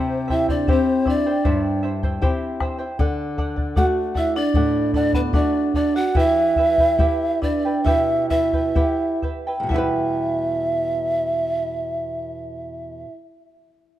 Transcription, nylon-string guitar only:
0, 0, Header, 1, 2, 480
1, 0, Start_track
1, 0, Key_signature, 1, "minor"
1, 0, Tempo, 771208
1, 1865, Time_signature, 4, 2, 24, 8
1, 2831, Tempo, 815217
1, 4271, Tempo, 881057
1, 5231, Tempo, 956938
1, 7858, End_track
2, 0, Start_track
2, 0, Title_t, "Nylon-string guitar"
2, 0, Program_c, 0, 24
2, 0, Note_on_c, 0, 48, 69
2, 411, Note_off_c, 0, 48, 0
2, 424, Note_on_c, 0, 60, 50
2, 427, Note_on_c, 0, 64, 44
2, 428, Note_on_c, 0, 67, 53
2, 809, Note_off_c, 0, 60, 0
2, 811, Note_off_c, 0, 64, 0
2, 811, Note_off_c, 0, 67, 0
2, 903, Note_on_c, 0, 43, 60
2, 1370, Note_off_c, 0, 43, 0
2, 1379, Note_on_c, 0, 60, 47
2, 1379, Note_on_c, 0, 64, 41
2, 1383, Note_on_c, 0, 67, 53
2, 1765, Note_off_c, 0, 60, 0
2, 1765, Note_off_c, 0, 64, 0
2, 1767, Note_off_c, 0, 67, 0
2, 1862, Note_on_c, 0, 50, 68
2, 2329, Note_off_c, 0, 50, 0
2, 2345, Note_on_c, 0, 57, 50
2, 2348, Note_on_c, 0, 62, 48
2, 2349, Note_on_c, 0, 66, 52
2, 2735, Note_off_c, 0, 57, 0
2, 2736, Note_off_c, 0, 62, 0
2, 2736, Note_off_c, 0, 66, 0
2, 2832, Note_on_c, 0, 45, 62
2, 3286, Note_off_c, 0, 45, 0
2, 3291, Note_on_c, 0, 57, 48
2, 3295, Note_on_c, 0, 62, 45
2, 3299, Note_on_c, 0, 66, 53
2, 3678, Note_off_c, 0, 57, 0
2, 3680, Note_off_c, 0, 62, 0
2, 3681, Note_off_c, 0, 66, 0
2, 3773, Note_on_c, 0, 52, 65
2, 4253, Note_off_c, 0, 52, 0
2, 4264, Note_on_c, 0, 59, 46
2, 4267, Note_on_c, 0, 64, 44
2, 4270, Note_on_c, 0, 67, 56
2, 4644, Note_off_c, 0, 59, 0
2, 4646, Note_off_c, 0, 64, 0
2, 4647, Note_off_c, 0, 67, 0
2, 4734, Note_on_c, 0, 47, 61
2, 5213, Note_off_c, 0, 47, 0
2, 5228, Note_on_c, 0, 59, 44
2, 5230, Note_on_c, 0, 64, 44
2, 5233, Note_on_c, 0, 67, 53
2, 5607, Note_off_c, 0, 59, 0
2, 5607, Note_off_c, 0, 64, 0
2, 5609, Note_off_c, 0, 67, 0
2, 5653, Note_on_c, 0, 40, 53
2, 5671, Note_on_c, 0, 47, 49
2, 5689, Note_on_c, 0, 55, 49
2, 5707, Note_on_c, 0, 59, 48
2, 5725, Note_on_c, 0, 64, 50
2, 5743, Note_off_c, 0, 64, 0
2, 5745, Note_on_c, 0, 71, 59
2, 7380, Note_off_c, 0, 40, 0
2, 7397, Note_off_c, 0, 47, 0
2, 7415, Note_off_c, 0, 55, 0
2, 7433, Note_off_c, 0, 59, 0
2, 7471, Note_off_c, 0, 71, 0
2, 7858, End_track
0, 0, End_of_file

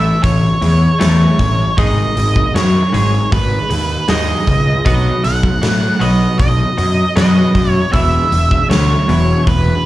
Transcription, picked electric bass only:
0, 0, Header, 1, 2, 480
1, 0, Start_track
1, 0, Tempo, 769527
1, 1109, Time_signature, 4, 2, 24, 8
1, 6148, End_track
2, 0, Start_track
2, 0, Title_t, "Picked electric bass"
2, 0, Program_c, 0, 34
2, 0, Note_on_c, 0, 33, 71
2, 65, Note_off_c, 0, 33, 0
2, 148, Note_on_c, 0, 33, 77
2, 301, Note_off_c, 0, 33, 0
2, 387, Note_on_c, 0, 40, 81
2, 540, Note_off_c, 0, 40, 0
2, 632, Note_on_c, 0, 40, 78
2, 784, Note_off_c, 0, 40, 0
2, 869, Note_on_c, 0, 33, 78
2, 1021, Note_off_c, 0, 33, 0
2, 1109, Note_on_c, 0, 32, 80
2, 1262, Note_off_c, 0, 32, 0
2, 1352, Note_on_c, 0, 32, 83
2, 1503, Note_off_c, 0, 32, 0
2, 1591, Note_on_c, 0, 42, 81
2, 1743, Note_off_c, 0, 42, 0
2, 1834, Note_on_c, 0, 32, 75
2, 1985, Note_off_c, 0, 32, 0
2, 2073, Note_on_c, 0, 32, 84
2, 2224, Note_off_c, 0, 32, 0
2, 2315, Note_on_c, 0, 39, 77
2, 2465, Note_off_c, 0, 39, 0
2, 2552, Note_on_c, 0, 39, 81
2, 2703, Note_off_c, 0, 39, 0
2, 2791, Note_on_c, 0, 37, 79
2, 2943, Note_off_c, 0, 37, 0
2, 3030, Note_on_c, 0, 35, 82
2, 3182, Note_off_c, 0, 35, 0
2, 3273, Note_on_c, 0, 35, 73
2, 3424, Note_off_c, 0, 35, 0
2, 3508, Note_on_c, 0, 45, 90
2, 3661, Note_off_c, 0, 45, 0
2, 3753, Note_on_c, 0, 35, 71
2, 3904, Note_off_c, 0, 35, 0
2, 3989, Note_on_c, 0, 35, 83
2, 4141, Note_off_c, 0, 35, 0
2, 4231, Note_on_c, 0, 42, 75
2, 4383, Note_off_c, 0, 42, 0
2, 4469, Note_on_c, 0, 42, 76
2, 4621, Note_off_c, 0, 42, 0
2, 4709, Note_on_c, 0, 42, 74
2, 4861, Note_off_c, 0, 42, 0
2, 4951, Note_on_c, 0, 28, 81
2, 5103, Note_off_c, 0, 28, 0
2, 5189, Note_on_c, 0, 28, 81
2, 5341, Note_off_c, 0, 28, 0
2, 5430, Note_on_c, 0, 38, 87
2, 5582, Note_off_c, 0, 38, 0
2, 5671, Note_on_c, 0, 28, 78
2, 5822, Note_off_c, 0, 28, 0
2, 5907, Note_on_c, 0, 28, 83
2, 6060, Note_off_c, 0, 28, 0
2, 6148, End_track
0, 0, End_of_file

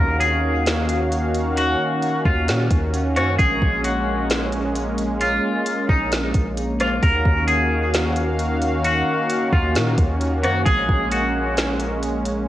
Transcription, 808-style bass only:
0, 0, Header, 1, 2, 480
1, 0, Start_track
1, 0, Tempo, 454545
1, 1660, Time_signature, 4, 2, 24, 8
1, 13180, End_track
2, 0, Start_track
2, 0, Title_t, "808-style bass"
2, 0, Program_c, 0, 38
2, 0, Note_on_c, 0, 39, 105
2, 1858, Note_off_c, 0, 39, 0
2, 2380, Note_on_c, 0, 39, 110
2, 2619, Note_on_c, 0, 46, 102
2, 2635, Note_off_c, 0, 39, 0
2, 2848, Note_off_c, 0, 46, 0
2, 2859, Note_on_c, 0, 39, 109
2, 3340, Note_on_c, 0, 42, 104
2, 3356, Note_off_c, 0, 39, 0
2, 3568, Note_off_c, 0, 42, 0
2, 3580, Note_on_c, 0, 34, 114
2, 3811, Note_off_c, 0, 34, 0
2, 3819, Note_on_c, 0, 34, 109
2, 5698, Note_off_c, 0, 34, 0
2, 6220, Note_on_c, 0, 34, 107
2, 6681, Note_off_c, 0, 34, 0
2, 6700, Note_on_c, 0, 34, 108
2, 7391, Note_off_c, 0, 34, 0
2, 7422, Note_on_c, 0, 39, 109
2, 7651, Note_off_c, 0, 39, 0
2, 7661, Note_on_c, 0, 39, 107
2, 9538, Note_off_c, 0, 39, 0
2, 10059, Note_on_c, 0, 39, 107
2, 10300, Note_on_c, 0, 46, 104
2, 10316, Note_off_c, 0, 39, 0
2, 10528, Note_off_c, 0, 46, 0
2, 10539, Note_on_c, 0, 39, 113
2, 11019, Note_on_c, 0, 42, 101
2, 11035, Note_off_c, 0, 39, 0
2, 11248, Note_off_c, 0, 42, 0
2, 11260, Note_on_c, 0, 34, 113
2, 11490, Note_off_c, 0, 34, 0
2, 11499, Note_on_c, 0, 34, 110
2, 13180, Note_off_c, 0, 34, 0
2, 13180, End_track
0, 0, End_of_file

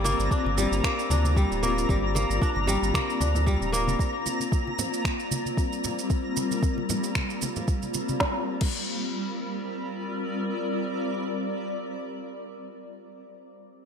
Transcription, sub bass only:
0, 0, Header, 1, 2, 480
1, 0, Start_track
1, 0, Tempo, 526316
1, 1721, Time_signature, 4, 2, 24, 8
1, 12633, End_track
2, 0, Start_track
2, 0, Title_t, "Sub bass"
2, 0, Program_c, 0, 38
2, 0, Note_on_c, 0, 31, 90
2, 140, Note_off_c, 0, 31, 0
2, 175, Note_on_c, 0, 31, 91
2, 264, Note_off_c, 0, 31, 0
2, 413, Note_on_c, 0, 31, 91
2, 609, Note_off_c, 0, 31, 0
2, 652, Note_on_c, 0, 31, 86
2, 742, Note_off_c, 0, 31, 0
2, 1003, Note_on_c, 0, 38, 81
2, 1339, Note_off_c, 0, 38, 0
2, 1378, Note_on_c, 0, 26, 90
2, 1694, Note_off_c, 0, 26, 0
2, 1724, Note_on_c, 0, 31, 91
2, 2060, Note_off_c, 0, 31, 0
2, 2096, Note_on_c, 0, 31, 89
2, 2184, Note_off_c, 0, 31, 0
2, 2336, Note_on_c, 0, 31, 90
2, 2531, Note_off_c, 0, 31, 0
2, 2574, Note_on_c, 0, 31, 90
2, 2663, Note_off_c, 0, 31, 0
2, 2924, Note_on_c, 0, 38, 77
2, 3260, Note_off_c, 0, 38, 0
2, 3293, Note_on_c, 0, 26, 90
2, 3612, Note_off_c, 0, 26, 0
2, 12633, End_track
0, 0, End_of_file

